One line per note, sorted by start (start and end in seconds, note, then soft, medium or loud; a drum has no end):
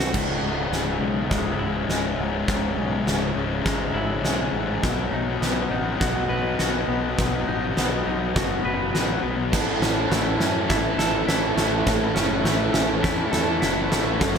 0.00 0.11 C2 medium
0.00 0.13 F#3 medium
0.00 0.13 A3 medium
0.00 0.13 F#4 medium
0.00 0.10 C#6 medium
0.00 snare medium
0.13 0.40 C#1 medium
0.13 1.60 C#2 medium
0.13 0.20 C#2 medium
0.13 0.20 G#2 medium
0.13 4.80 C#5 medium
0.13 4.79 E5 medium
0.13 4.79 G#5 medium
0.13 4.80 E6 medium
0.13 kick medium
0.13 snare soft
0.13 crash loud
0.21 0.28 C#2 soft
0.21 0.28 G#2 soft
0.28 0.36 C#2 medium
0.28 0.36 G#2 medium
0.36 0.43 C#2 soft
0.36 0.44 G#2 medium
0.41 0.68 C#1 medium
0.41 0.52 C#2 medium
0.41 0.51 G#2 medium
0.41 0.99 C#3 medium
0.51 0.60 C#2 medium
0.51 0.59 G#2 medium
0.60 0.67 C#2 medium
0.60 0.67 G#2 medium
0.68 0.97 C#1 medium
0.68 0.75 C#2 medium
0.68 0.75 G#2 medium
0.68 2.17 G#2 medium
0.73 0.83 C#2 medium
0.73 0.83 G#2 medium
0.73 snare soft
0.83 0.89 C#2 medium
0.83 0.91 G#2 medium
0.89 0.97 C#2 medium
0.89 0.99 G#2 medium
0.99 1.27 B1 medium
0.99 1.06 C#2 medium
0.99 1.07 G#2 medium
0.99 2.48 C#3 medium
1.06 1.14 C#2 medium
1.06 1.14 G#2 medium
1.14 1.21 C#2 medium
1.14 1.22 G#2 medium
1.21 1.29 C#2 medium
1.21 1.30 G#2 medium
1.29 1.57 C#1 medium
1.29 1.37 C#2 medium
1.29 1.38 G#2 medium
1.29 1.87 G#3 medium
1.29 kick medium
1.29 snare soft
1.37 1.44 C#2 medium
1.37 1.47 G#2 medium
1.44 1.52 C#2 medium
1.44 1.53 G#2 medium
1.53 1.60 C#2 medium
1.53 1.61 G#2 medium
1.59 1.86 C#1 medium
1.59 1.67 C#2 medium
1.59 1.69 G#2 medium
1.59 3.06 E4 medium
1.68 1.75 C#2 medium
1.68 1.76 G#2 medium
1.76 1.83 C#2 medium
1.76 1.84 G#2 medium
1.83 1.91 C#2 medium
1.83 1.92 G#2 medium
1.88 2.15 C#1 medium
1.88 1.99 C#2 soft
1.88 3.36 G#3 medium
1.88 snare soft
1.93 2.00 G#2 soft
1.99 2.07 C#2 medium
1.99 2.08 G#2 medium
2.07 2.15 C#2 medium
2.07 2.15 G#2 medium
2.15 2.45 C#1 medium
2.15 2.22 C#2 medium
2.15 2.23 G#2 medium
2.15 3.05 G#2 medium
2.22 2.29 C#2 medium
2.22 2.31 G#2 soft
2.30 2.37 C#2 medium
2.30 2.39 G#2 medium
2.37 2.45 C#2 soft
2.37 2.47 G#2 medium
2.47 2.74 C#1 medium
2.47 3.94 C#2 medium
2.47 2.54 C#2 medium
2.47 2.55 G#2 medium
2.47 kick loud
2.47 snare soft
2.54 2.61 C#2 soft
2.54 2.63 G#2 medium
2.62 2.69 C#2 medium
2.62 2.71 G#2 medium
2.70 2.78 C#2 medium
2.70 2.78 G#2 medium
2.77 3.04 B1 medium
2.77 2.86 C#2 medium
2.77 2.85 G#2 medium
2.77 3.34 C#3 medium
2.86 2.92 C#2 soft
2.86 2.93 G#2 medium
2.92 2.99 C#2 medium
2.92 3.01 G#2 medium
2.99 3.07 C#2 medium
2.99 3.08 G#2 medium
3.06 3.33 C#1 medium
3.06 3.15 C#2 medium
3.06 4.52 G#2 medium
3.06 3.16 G#2 medium
3.06 snare medium
3.16 3.23 C#2 medium
3.16 3.24 G#2 medium
3.23 3.31 C#2 medium
3.23 3.31 G#2 medium
3.31 3.38 C#2 medium
3.31 3.38 G#2 medium
3.31 4.83 C#3 medium
3.36 3.62 C#1 medium
3.36 3.45 C#2 medium
3.36 3.46 G#2 medium
3.45 3.53 C#2 medium
3.45 3.54 G#2 medium
3.53 3.61 C#2 medium
3.53 3.62 G#2 medium
3.61 3.67 C#2 medium
3.61 3.69 G#2 medium
3.61 4.22 G#3 medium
3.66 3.92 G#1 medium
3.66 3.75 C#2 medium
3.66 3.77 G#2 medium
3.66 kick loud
3.66 snare medium
3.76 3.83 C#2 medium
3.76 3.84 G#2 medium
3.84 3.91 C#2 medium
3.84 3.92 G#2 medium
3.92 4.21 G#1 medium
3.92 3.98 C#2 medium
3.92 3.99 G#2 medium
3.92 4.83 E4 medium
3.99 4.06 C#2 medium
3.99 4.06 G#2 medium
4.07 4.14 C#2 medium
4.07 4.13 G#2 medium
4.14 4.21 C#2 medium
4.14 4.21 G#2 medium
4.22 4.50 B1 medium
4.22 4.29 C#2 medium
4.22 4.30 G#2 medium
4.22 4.83 G#3 medium
4.22 snare medium
4.30 4.37 C#2 medium
4.30 4.37 G#2 medium
4.37 4.45 C#2 medium
4.37 4.45 G#2 medium
4.45 4.51 C#2 medium
4.45 4.53 G#2 medium
4.51 4.79 A1 medium
4.51 4.59 C#2 soft
4.51 4.60 G#2 medium
4.51 4.83 G#2 medium
4.59 4.67 C#2 medium
4.59 4.68 G#2 medium
4.67 4.75 C#2 soft
4.67 4.75 G#2 medium
4.75 4.82 C#2 medium
4.75 4.83 G#2 medium
4.82 5.09 B1 medium
4.82 6.30 B2 medium
4.82 4.91 B2 medium
4.82 4.91 F#3 medium
4.82 9.48 B4 medium
4.82 9.48 D#5 medium
4.82 9.48 F#5 medium
4.82 9.48 D#6 medium
4.82 kick medium
4.82 snare medium
4.91 4.99 B2 soft
4.91 4.99 F#3 medium
4.99 5.05 B2 medium
4.99 5.06 F#3 medium
5.05 5.13 B2 soft
5.05 5.14 F#3 medium
5.12 5.39 B1 medium
5.12 5.21 B2 medium
5.12 5.22 F#3 medium
5.12 5.70 D#4 medium
5.22 5.30 B2 soft
5.22 5.30 F#3 medium
5.30 5.36 B2 medium
5.30 5.36 F#3 medium
5.37 5.44 B2 medium
5.37 5.45 F#3 medium
5.41 5.68 B1 medium
5.41 5.52 B2 medium
5.41 6.87 B3 medium
5.41 snare medium
5.46 5.53 F#3 medium
5.53 5.61 B2 medium
5.53 5.61 F#3 medium
5.61 5.69 B2 medium
5.61 5.69 F#3 medium
5.69 5.97 A1 medium
5.69 5.76 B2 medium
5.69 5.77 F#3 medium
5.69 7.18 D#4 medium
5.76 5.84 B2 medium
5.76 5.85 F#3 medium
5.84 5.91 B2 medium
5.84 5.92 F#3 medium
5.92 5.99 B2 medium
5.92 6.00 F#3 medium
5.99 6.27 B1 medium
5.99 6.07 B2 medium
5.99 6.08 F#3 medium
5.99 6.58 F#4 medium
5.99 kick loud
5.99 snare medium
6.08 6.16 B2 medium
6.08 6.15 F#3 medium
6.16 6.23 B2 medium
6.16 6.24 F#3 medium
6.23 6.30 B2 medium
6.23 6.32 F#3 medium
6.29 6.56 B1 medium
6.29 6.39 B2 medium
6.29 6.40 F#3 medium
6.29 7.76 B4 medium
6.39 6.45 B2 medium
6.39 6.48 F#3 medium
6.46 6.53 B2 medium
6.46 6.54 F#3 medium
6.54 6.62 B2 medium
6.54 6.62 F#3 medium
6.59 6.86 B1 medium
6.59 6.70 B2 medium
6.59 6.70 F#3 medium
6.59 8.06 F#4 medium
6.59 snare medium
6.70 6.78 B2 medium
6.70 6.78 F#3 medium
6.78 6.84 B2 soft
6.78 6.86 F#3 medium
6.85 7.14 B1 medium
6.85 6.92 B2 medium
6.85 6.93 F#3 medium
6.89 7.76 B3 medium
6.93 7.00 B2 soft
6.93 7.01 F#3 soft
7.00 7.08 B2 medium
7.00 7.10 F#3 medium
7.10 7.17 B2 soft
7.10 7.18 F#3 medium
7.18 7.45 B1 medium
7.18 7.25 B2 medium
7.18 8.65 B2 medium
7.18 7.26 F#3 medium
7.18 kick loud
7.18 snare medium
7.25 7.33 B2 soft
7.25 7.34 F#3 medium
7.34 7.41 B2 medium
7.34 7.41 F#3 medium
7.41 7.49 B2 medium
7.41 7.49 F#3 medium
7.48 7.74 A1 medium
7.48 7.57 B2 medium
7.48 7.58 F#3 medium
7.48 8.06 D#4 medium
7.57 7.64 B2 medium
7.57 7.66 F#3 medium
7.65 7.72 B2 medium
7.65 7.73 F#3 medium
7.72 7.80 B2 medium
7.72 7.81 F#3 medium
7.77 8.03 B1 medium
7.77 7.88 B2 medium
7.77 9.22 B3 medium
7.77 snare medium
7.81 7.88 F#3 medium
7.88 7.95 B2 medium
7.88 7.96 F#3 medium
7.96 8.04 B2 medium
7.96 8.05 F#3 medium
8.04 8.32 B1 medium
8.04 8.12 B2 medium
8.04 8.12 F#3 medium
8.04 9.53 D#4 medium
8.12 8.19 B2 medium
8.12 8.20 F#3 medium
8.20 8.27 B2 medium
8.20 8.27 F#3 medium
8.28 8.34 B2 medium
8.28 8.34 F#3 medium
8.35 8.62 F#1 medium
8.35 8.42 B2 medium
8.35 8.43 F#3 medium
8.35 8.92 F#4 medium
8.35 kick loud
8.35 snare medium
8.43 8.50 B2 medium
8.43 8.51 F#3 medium
8.50 8.58 B2 medium
8.50 8.58 F#3 medium
8.58 8.66 B2 medium
8.58 8.67 F#3 medium
8.65 8.91 F#1 medium
8.65 8.73 B2 medium
8.65 8.74 F#3 medium
8.65 9.53 B4 medium
8.73 8.81 B2 medium
8.73 8.83 F#3 medium
8.82 8.90 B2 medium
8.82 8.90 F#3 medium
8.90 9.20 A1 medium
8.90 8.98 B2 medium
8.90 8.98 F#3 medium
8.90 9.52 F#4 medium
8.95 9.06 B2 medium
8.95 9.06 F#3 medium
8.95 snare medium
9.07 9.14 B2 medium
9.07 9.13 F#3 medium
9.13 9.20 B2 medium
9.13 9.21 F#3 medium
9.21 9.53 B1 medium
9.21 9.29 B2 medium
9.21 9.29 F#3 medium
9.21 9.52 B3 medium
9.29 9.36 B2 soft
9.29 9.37 F#3 medium
9.37 9.44 B2 medium
9.37 9.43 F#3 medium
9.44 9.52 B2 medium
9.44 9.51 F#3 medium
9.52 9.79 A1 medium
9.52 10.99 A2 medium
9.52 9.60 A2 medium
9.52 9.60 E3 medium
9.52 9.59 E4 medium
9.52 14.38 A4 medium
9.52 9.60 A4 medium
9.52 14.17 C#5 medium
9.52 14.16 E5 medium
9.52 14.38 C#6 medium
9.52 kick loud
9.52 snare medium
9.52 crash loud
9.60 9.67 A2 soft
9.60 9.68 E3 medium
9.60 9.67 E4 soft
9.60 9.68 A4 medium
9.67 9.75 A2 medium
9.67 9.76 E3 medium
9.67 9.74 E4 medium
9.67 9.76 A4 medium
9.75 9.83 A2 soft
9.75 9.82 E3 medium
9.75 9.82 E4 soft
9.75 9.82 A4 medium
9.80 10.07 A1 medium
9.80 9.91 A2 medium
9.80 9.91 E3 medium
9.80 10.39 C#4 medium
9.80 9.90 E4 medium
9.80 9.90 A4 medium
9.80 snare medium
9.90 9.98 A2 soft
9.90 9.99 E3 medium
9.90 9.98 E4 medium
9.90 9.98 A4 medium
9.99 10.06 A2 medium
9.99 10.07 E3 medium
9.99 10.06 E4 medium
9.99 10.07 A4 medium
10.06 10.37 A1 medium
10.06 10.14 A2 medium
10.06 10.14 E3 medium
10.06 10.14 E4 soft
10.06 10.14 A4 medium
10.11 10.22 E3 medium
10.11 11.56 A3 medium
10.11 10.22 E4 medium
10.11 10.22 A4 medium
10.11 snare medium
10.15 10.23 A2 medium
10.22 10.29 A2 soft
10.22 10.30 E3 medium
10.22 10.29 E4 medium
10.22 10.29 A4 medium
10.29 10.37 A2 medium
10.29 10.38 E3 medium
10.29 10.36 E4 medium
10.29 10.37 A4 medium
10.37 10.66 F#2 medium
10.37 10.45 A2 medium
10.37 10.45 E3 medium
10.37 12.14 C#4 medium
10.37 10.44 E4 medium
10.37 10.45 A4 medium
10.37 snare medium
10.45 10.52 A2 medium
10.45 10.54 E3 medium
10.45 10.53 E4 medium
10.45 10.53 A4 medium
10.53 10.61 A2 medium
10.53 10.61 E3 medium
10.53 10.61 E4 medium
10.53 10.60 A4 medium
10.61 10.68 A2 medium
10.61 10.69 E3 medium
10.61 10.68 E4 medium
10.61 10.69 A4 medium
10.68 10.96 A1 medium
10.68 10.76 A2 soft
10.68 10.77 E3 medium
10.68 10.76 E4 medium
10.68 11.26 E4 medium
10.68 10.76 A4 medium
10.68 kick loud
10.68 snare medium
10.76 10.84 A2 medium
10.76 10.85 E3 medium
10.76 10.83 E4 medium
10.76 10.83 A4 medium
10.84 10.92 A2 medium
10.84 10.93 E3 medium
10.84 10.91 E4 medium
10.84 10.91 A4 medium
10.91 10.99 A2 medium
10.91 11.01 E3 medium
10.91 10.99 E4 medium
10.91 10.99 A4 medium
10.97 11.24 A1 medium
10.97 11.07 A2 medium
10.97 11.07 E4 medium
10.97 13.31 A4 medium
10.97 11.07 A4 medium
10.97 snare medium
11.01 11.08 E3 medium
11.08 11.15 A2 medium
11.08 11.15 E3 medium
11.08 11.14 E4 medium
11.08 11.15 A4 medium
11.15 11.22 A2 soft
11.15 11.23 E3 medium
11.15 11.23 E4 medium
11.15 11.22 A4 medium
11.22 11.30 A2 medium
11.22 11.31 E3 medium
11.22 11.30 E4 medium
11.22 11.30 A4 medium
11.27 11.54 A1 medium
11.27 12.74 E4 medium
11.27 11.38 E4 medium
11.27 snare medium
11.31 11.38 A2 soft
11.31 11.39 E3 medium
11.31 11.38 A4 medium
11.39 11.46 A2 medium
11.39 11.47 E3 medium
11.39 11.46 E4 medium
11.39 11.46 A4 medium
11.46 11.54 A2 soft
11.46 11.55 E3 medium
11.46 11.54 E4 medium
11.46 11.54 A4 medium
11.54 11.83 A1 medium
11.54 11.62 A2 medium
11.54 11.63 E3 medium
11.54 12.43 A3 medium
11.54 11.61 E4 medium
11.54 11.62 A4 medium
11.54 snare medium
11.62 11.69 A2 soft
11.62 11.70 E3 medium
11.62 11.69 E4 medium
11.62 11.69 A4 medium
11.69 11.77 A2 medium
11.69 11.78 E3 medium
11.69 11.77 E4 medium
11.69 11.77 A4 medium
11.77 11.85 A2 soft
11.77 11.86 E3 medium
11.77 11.85 E4 soft
11.77 11.86 A4 soft
11.85 12.13 A1 medium
11.85 13.32 A2 medium
11.85 11.94 A2 medium
11.85 11.93 E3 medium
11.85 11.94 E4 medium
11.85 11.94 A4 medium
11.85 kick loud
11.85 snare medium
11.94 12.02 A2 medium
11.94 12.02 E3 medium
11.94 12.02 E4 soft
11.94 12.02 A4 medium
12.02 12.09 A2 medium
12.02 12.10 E3 medium
12.02 12.10 E4 medium
12.02 12.09 A4 medium
12.09 12.17 A2 medium
12.09 12.18 E3 medium
12.09 12.18 E4 medium
12.09 12.17 A4 medium
12.14 12.42 F#1 medium
12.14 12.25 E3 medium
12.14 12.73 C#4 medium
12.14 12.25 E4 medium
12.14 snare medium
12.19 12.26 A2 medium
12.19 12.25 A4 medium
12.25 12.32 A2 medium
12.25 12.33 E3 medium
12.25 12.33 E4 medium
12.25 12.33 A4 medium
12.33 12.40 A2 medium
12.33 12.41 E3 medium
12.33 12.40 E4 medium
12.33 12.40 A4 medium
12.40 12.71 A1 medium
12.40 12.48 A2 medium
12.40 12.49 E3 medium
12.40 13.90 A3 medium
12.40 12.47 E4 medium
12.40 12.48 A4 medium
12.45 12.56 E4 medium
12.45 12.57 A4 medium
12.45 snare medium
12.49 12.56 A2 medium
12.49 12.57 E3 medium
12.57 12.65 A2 medium
12.57 12.65 E3 medium
12.57 12.64 E4 medium
12.57 12.64 A4 medium
12.65 12.72 A2 medium
12.65 12.72 E3 medium
12.65 12.72 E4 medium
12.65 12.72 A4 medium
12.72 13.00 A1 medium
12.72 12.80 A2 medium
12.72 12.80 E3 medium
12.72 14.38 C#4 medium
12.72 12.79 E4 medium
12.72 12.80 A4 medium
12.72 snare medium
12.80 12.88 A2 medium
12.80 12.88 E3 medium
12.80 12.88 E4 medium
12.80 12.88 A4 medium
12.88 12.94 A2 medium
12.88 12.95 E3 medium
12.88 12.95 E4 medium
12.88 12.96 A4 medium
12.95 13.01 A2 medium
12.95 13.03 E3 medium
12.95 13.03 E4 medium
12.95 13.03 A4 medium
13.02 13.30 E2 medium
13.02 13.10 A2 medium
13.02 13.11 E3 medium
13.02 13.60 E4 medium
13.02 13.11 E4 medium
13.02 13.11 A4 medium
13.02 kick loud
13.02 snare medium
13.11 13.19 A2 medium
13.11 13.19 E3 medium
13.11 13.18 E4 medium
13.11 13.19 A4 medium
13.19 13.26 A2 medium
13.19 13.27 E3 medium
13.19 13.26 E4 medium
13.19 13.27 A4 medium
13.26 13.33 A2 medium
13.26 13.35 E3 medium
13.26 13.34 E4 medium
13.26 13.34 A4 medium
13.31 13.59 E2 medium
13.31 13.42 A2 medium
13.31 13.42 E4 medium
13.31 14.38 A4 medium
13.31 13.42 A4 medium
13.31 snare medium
13.35 13.41 E3 medium
13.42 13.50 A2 medium
13.42 13.49 E3 medium
13.42 13.50 E4 medium
13.42 13.50 A4 medium
13.50 13.57 A2 medium
13.50 13.58 E3 medium
13.50 13.57 E4 medium
13.50 13.57 A4 medium
13.57 13.65 A2 medium
13.57 13.66 E3 medium
13.57 13.65 E4 medium
13.57 14.20 E4 medium
13.57 13.65 A4 medium
13.62 13.88 F#1 medium
13.62 13.73 A2 medium
13.62 13.73 E3 medium
13.62 13.74 E4 medium
13.62 13.72 A4 medium
13.62 snare medium
13.72 13.81 A2 medium
13.72 13.81 E3 medium
13.72 13.81 E4 medium
13.72 13.80 A4 medium
13.81 13.89 A2 medium
13.81 13.89 E3 medium
13.81 13.88 E4 medium
13.81 13.88 A4 medium
13.88 14.18 A1 medium
13.88 13.96 A2 medium
13.88 13.97 E3 medium
13.88 14.38 A3 medium
13.88 13.96 E4 medium
13.88 13.97 A4 medium
13.88 snare medium
13.97 14.04 A2 medium
13.97 14.05 E3 medium
13.97 14.04 E4 medium
13.97 14.04 A4 medium
14.04 14.12 A2 medium
14.04 14.12 E3 medium
14.04 14.11 E4 medium
14.04 14.12 A4 medium
14.11 14.20 A2 medium
14.11 14.21 E3 medium
14.11 14.19 E4 soft
14.11 14.20 A4 medium
14.19 14.38 F#1 medium
14.19 14.38 F#2 medium
14.19 14.28 F#2 medium
14.19 14.28 C#3 medium
14.19 14.27 C#4 medium
14.19 14.28 F#4 medium
14.19 14.38 F#5 medium
14.19 14.38 G#5 medium
14.19 kick loud
14.19 snare loud
14.28 14.35 F#2 medium
14.28 14.36 C#3 medium
14.28 14.35 C#4 medium
14.28 14.36 F#4 medium